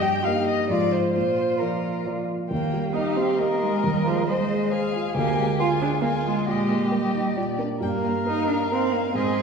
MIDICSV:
0, 0, Header, 1, 5, 480
1, 0, Start_track
1, 0, Key_signature, -3, "major"
1, 0, Tempo, 450450
1, 1228, Time_signature, 3, 2, 24, 8
1, 3153, Tempo, 438276
1, 6513, Tempo, 446097
1, 10166, End_track
2, 0, Start_track
2, 0, Title_t, "Violin"
2, 0, Program_c, 0, 40
2, 21, Note_on_c, 0, 79, 60
2, 255, Note_on_c, 0, 77, 62
2, 271, Note_off_c, 0, 79, 0
2, 498, Note_off_c, 0, 77, 0
2, 504, Note_on_c, 0, 75, 52
2, 739, Note_off_c, 0, 75, 0
2, 744, Note_on_c, 0, 74, 56
2, 985, Note_on_c, 0, 72, 49
2, 1001, Note_off_c, 0, 74, 0
2, 1215, Note_off_c, 0, 72, 0
2, 1221, Note_on_c, 0, 72, 54
2, 1699, Note_on_c, 0, 70, 42
2, 1715, Note_off_c, 0, 72, 0
2, 2187, Note_off_c, 0, 70, 0
2, 2661, Note_on_c, 0, 79, 35
2, 3112, Note_off_c, 0, 79, 0
2, 3141, Note_on_c, 0, 77, 32
2, 3613, Note_on_c, 0, 75, 35
2, 3629, Note_off_c, 0, 77, 0
2, 4590, Note_off_c, 0, 75, 0
2, 4602, Note_on_c, 0, 75, 41
2, 5074, Note_off_c, 0, 75, 0
2, 5086, Note_on_c, 0, 77, 44
2, 5546, Note_off_c, 0, 77, 0
2, 5553, Note_on_c, 0, 80, 49
2, 5998, Note_off_c, 0, 80, 0
2, 6027, Note_on_c, 0, 80, 46
2, 6490, Note_off_c, 0, 80, 0
2, 6496, Note_on_c, 0, 80, 43
2, 6973, Note_off_c, 0, 80, 0
2, 6997, Note_on_c, 0, 75, 41
2, 7468, Note_off_c, 0, 75, 0
2, 7484, Note_on_c, 0, 75, 36
2, 7957, Note_on_c, 0, 74, 38
2, 7973, Note_off_c, 0, 75, 0
2, 8225, Note_off_c, 0, 74, 0
2, 8446, Note_on_c, 0, 79, 41
2, 8532, Note_off_c, 0, 79, 0
2, 8683, Note_on_c, 0, 77, 39
2, 9881, Note_on_c, 0, 75, 45
2, 9898, Note_off_c, 0, 77, 0
2, 10166, Note_off_c, 0, 75, 0
2, 10166, End_track
3, 0, Start_track
3, 0, Title_t, "Violin"
3, 0, Program_c, 1, 40
3, 3155, Note_on_c, 1, 67, 39
3, 3633, Note_on_c, 1, 70, 46
3, 3649, Note_off_c, 1, 67, 0
3, 4601, Note_off_c, 1, 70, 0
3, 4608, Note_on_c, 1, 72, 49
3, 5078, Note_on_c, 1, 68, 48
3, 5094, Note_off_c, 1, 72, 0
3, 5549, Note_off_c, 1, 68, 0
3, 5555, Note_on_c, 1, 67, 54
3, 6044, Note_on_c, 1, 65, 49
3, 6061, Note_off_c, 1, 67, 0
3, 6510, Note_off_c, 1, 65, 0
3, 6516, Note_on_c, 1, 65, 46
3, 6987, Note_on_c, 1, 67, 45
3, 7004, Note_off_c, 1, 65, 0
3, 8200, Note_off_c, 1, 67, 0
3, 8439, Note_on_c, 1, 70, 52
3, 9832, Note_off_c, 1, 70, 0
3, 9871, Note_on_c, 1, 68, 50
3, 10166, Note_off_c, 1, 68, 0
3, 10166, End_track
4, 0, Start_track
4, 0, Title_t, "Grand piano"
4, 0, Program_c, 2, 0
4, 0, Control_c, 2, 64, 127
4, 0, Note_on_c, 2, 43, 42
4, 262, Note_off_c, 2, 43, 0
4, 282, Note_on_c, 2, 58, 31
4, 286, Note_on_c, 2, 67, 33
4, 286, Note_on_c, 2, 75, 32
4, 709, Note_off_c, 2, 58, 0
4, 711, Note_off_c, 2, 67, 0
4, 711, Note_off_c, 2, 75, 0
4, 740, Note_on_c, 2, 44, 41
4, 741, Note_on_c, 2, 53, 32
4, 747, Note_on_c, 2, 65, 29
4, 753, Note_on_c, 2, 75, 30
4, 764, Control_c, 2, 64, 0
4, 949, Control_c, 2, 64, 127
4, 1183, Note_off_c, 2, 53, 0
4, 1186, Note_off_c, 2, 65, 0
4, 1189, Note_off_c, 2, 75, 0
4, 1211, Note_off_c, 2, 44, 0
4, 1230, Note_on_c, 2, 46, 35
4, 1251, Control_c, 2, 64, 0
4, 1417, Control_c, 2, 64, 127
4, 1698, Note_off_c, 2, 46, 0
4, 1721, Note_on_c, 2, 53, 27
4, 1726, Note_on_c, 2, 65, 27
4, 1731, Note_on_c, 2, 74, 28
4, 2156, Note_off_c, 2, 53, 0
4, 2158, Note_off_c, 2, 65, 0
4, 2161, Note_off_c, 2, 74, 0
4, 2196, Note_on_c, 2, 53, 28
4, 2203, Note_on_c, 2, 74, 30
4, 2205, Note_on_c, 2, 65, 25
4, 2633, Note_off_c, 2, 53, 0
4, 2637, Note_off_c, 2, 65, 0
4, 2637, Note_off_c, 2, 74, 0
4, 2673, Note_on_c, 2, 39, 36
4, 2694, Control_c, 2, 64, 0
4, 2878, Control_c, 2, 64, 127
4, 2911, Note_on_c, 2, 55, 28
4, 3145, Note_on_c, 2, 75, 29
4, 3297, Note_off_c, 2, 55, 0
4, 3388, Note_on_c, 2, 67, 35
4, 3538, Note_off_c, 2, 75, 0
4, 3638, Note_on_c, 2, 75, 32
4, 3780, Note_off_c, 2, 67, 0
4, 3881, Note_on_c, 2, 63, 31
4, 4025, Note_off_c, 2, 75, 0
4, 4077, Note_off_c, 2, 39, 0
4, 4116, Note_on_c, 2, 39, 39
4, 4122, Note_off_c, 2, 63, 0
4, 4141, Control_c, 2, 64, 0
4, 4320, Control_c, 2, 64, 127
4, 4355, Note_on_c, 2, 56, 29
4, 4594, Note_on_c, 2, 72, 35
4, 4744, Note_off_c, 2, 56, 0
4, 4833, Note_on_c, 2, 68, 42
4, 4984, Note_off_c, 2, 72, 0
4, 5077, Note_on_c, 2, 72, 41
4, 5222, Note_off_c, 2, 68, 0
4, 5314, Note_on_c, 2, 65, 40
4, 5461, Note_off_c, 2, 72, 0
4, 5514, Note_off_c, 2, 39, 0
4, 5550, Note_on_c, 2, 38, 45
4, 5556, Note_off_c, 2, 65, 0
4, 5579, Control_c, 2, 64, 0
4, 5780, Control_c, 2, 64, 127
4, 5800, Note_on_c, 2, 56, 37
4, 6038, Note_on_c, 2, 70, 37
4, 6179, Note_off_c, 2, 56, 0
4, 6270, Note_on_c, 2, 68, 42
4, 6418, Note_off_c, 2, 70, 0
4, 6505, Note_on_c, 2, 70, 38
4, 6653, Note_off_c, 2, 68, 0
4, 6748, Note_on_c, 2, 65, 34
4, 6890, Note_off_c, 2, 70, 0
4, 6943, Note_off_c, 2, 38, 0
4, 6989, Note_off_c, 2, 65, 0
4, 6995, Note_on_c, 2, 46, 38
4, 7011, Control_c, 2, 64, 0
4, 7176, Control_c, 2, 64, 127
4, 7226, Note_on_c, 2, 58, 29
4, 7472, Note_on_c, 2, 70, 32
4, 7617, Note_off_c, 2, 58, 0
4, 7719, Note_on_c, 2, 63, 36
4, 7861, Note_off_c, 2, 70, 0
4, 7932, Note_off_c, 2, 46, 0
4, 7949, Note_on_c, 2, 46, 41
4, 7960, Note_off_c, 2, 63, 0
4, 7981, Control_c, 2, 64, 0
4, 8160, Control_c, 2, 64, 127
4, 8189, Note_on_c, 2, 62, 27
4, 8195, Note_on_c, 2, 70, 32
4, 8412, Note_off_c, 2, 62, 0
4, 8415, Note_off_c, 2, 70, 0
4, 8424, Note_off_c, 2, 46, 0
4, 8427, Note_on_c, 2, 43, 36
4, 8465, Control_c, 2, 64, 0
4, 8638, Control_c, 2, 64, 127
4, 8680, Note_on_c, 2, 58, 30
4, 8922, Note_on_c, 2, 70, 33
4, 9066, Note_off_c, 2, 58, 0
4, 9172, Note_on_c, 2, 63, 36
4, 9306, Note_off_c, 2, 70, 0
4, 9407, Note_on_c, 2, 70, 35
4, 9549, Note_off_c, 2, 63, 0
4, 9634, Note_on_c, 2, 63, 32
4, 9784, Note_off_c, 2, 70, 0
4, 9826, Note_off_c, 2, 43, 0
4, 9871, Note_on_c, 2, 44, 42
4, 9874, Note_off_c, 2, 63, 0
4, 9899, Control_c, 2, 64, 0
4, 10086, Control_c, 2, 64, 127
4, 10104, Note_on_c, 2, 56, 31
4, 10166, Note_off_c, 2, 44, 0
4, 10166, Note_off_c, 2, 56, 0
4, 10166, End_track
5, 0, Start_track
5, 0, Title_t, "Cello"
5, 0, Program_c, 3, 42
5, 0, Note_on_c, 3, 67, 51
5, 258, Note_on_c, 3, 63, 43
5, 274, Note_off_c, 3, 67, 0
5, 748, Note_on_c, 3, 65, 42
5, 764, Note_off_c, 3, 63, 0
5, 1203, Note_off_c, 3, 65, 0
5, 1209, Note_on_c, 3, 65, 40
5, 2400, Note_off_c, 3, 65, 0
5, 2669, Note_on_c, 3, 58, 50
5, 3128, Note_on_c, 3, 63, 55
5, 3144, Note_off_c, 3, 58, 0
5, 3372, Note_on_c, 3, 60, 49
5, 3389, Note_off_c, 3, 63, 0
5, 3621, Note_on_c, 3, 58, 48
5, 3637, Note_off_c, 3, 60, 0
5, 3874, Note_on_c, 3, 56, 53
5, 3890, Note_off_c, 3, 58, 0
5, 4111, Note_on_c, 3, 55, 55
5, 4127, Note_off_c, 3, 56, 0
5, 4339, Note_off_c, 3, 55, 0
5, 4345, Note_on_c, 3, 53, 53
5, 4590, Note_off_c, 3, 53, 0
5, 4599, Note_on_c, 3, 56, 53
5, 4680, Note_on_c, 3, 55, 42
5, 4687, Note_off_c, 3, 56, 0
5, 4738, Note_on_c, 3, 56, 54
5, 4755, Note_off_c, 3, 55, 0
5, 5314, Note_off_c, 3, 56, 0
5, 5568, Note_on_c, 3, 58, 65
5, 6007, Note_off_c, 3, 58, 0
5, 6040, Note_on_c, 3, 65, 70
5, 6128, Note_off_c, 3, 65, 0
5, 6280, Note_on_c, 3, 62, 62
5, 6368, Note_off_c, 3, 62, 0
5, 6496, Note_on_c, 3, 58, 63
5, 6582, Note_off_c, 3, 58, 0
5, 6752, Note_on_c, 3, 56, 54
5, 6986, Note_off_c, 3, 56, 0
5, 7003, Note_on_c, 3, 56, 56
5, 7472, Note_on_c, 3, 55, 43
5, 7488, Note_off_c, 3, 56, 0
5, 7958, Note_off_c, 3, 55, 0
5, 8433, Note_on_c, 3, 58, 49
5, 8884, Note_off_c, 3, 58, 0
5, 8926, Note_on_c, 3, 63, 57
5, 9137, Note_off_c, 3, 63, 0
5, 9144, Note_on_c, 3, 62, 50
5, 9230, Note_off_c, 3, 62, 0
5, 9406, Note_on_c, 3, 60, 62
5, 9635, Note_on_c, 3, 58, 57
5, 9651, Note_off_c, 3, 60, 0
5, 9856, Note_off_c, 3, 58, 0
5, 9863, Note_on_c, 3, 60, 61
5, 10166, Note_off_c, 3, 60, 0
5, 10166, End_track
0, 0, End_of_file